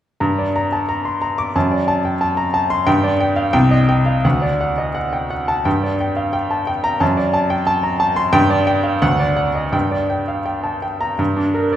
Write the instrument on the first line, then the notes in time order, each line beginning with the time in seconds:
grand piano
0.20 G2 A#5
0.39 D5
0.56 A#5
0.72 A5
0.89 A#5
1.05 C6
1.22 A#5
1.38 D6
1.55 F#2 A5
1.71 D5
1.88 A5
2.05 G5
2.21 A5
2.37 A#5
2.54 A5
2.70 C6
2.87 G2 G5
3.03 D5
3.20 G5
3.36 F5
3.53 C2 G5
3.71 D#5
3.89 G5
4.06 F5
4.24 D2 F#5
4.42 D5
4.61 F#5
4.78 D#5
4.95 F#5
5.13 G5
5.30 F#5
5.48 A5
5.65 G2 G5
5.83 D5
6.00 G5
6.17 F5
6.33 G5
6.51 A5
6.67 G5
6.84 A#5
7.00 F#2 A5
7.17 D5
7.34 A5
7.50 G5
7.67 A5
7.83 A#5
8.00 A5
8.16 C6
8.33 G2 G5
8.50 D5
8.67 G5
8.84 F5
9.02 D2 F#5
9.19 D5
9.37 F#5
9.55 D#5
9.72 G2 G5
9.91 D5
10.10 G5
10.28 F5
10.46 G5
10.64 A5
10.82 G5
11.01 A#5
11.19 G2
11.37 D4
11.54 A#4
11.72 D5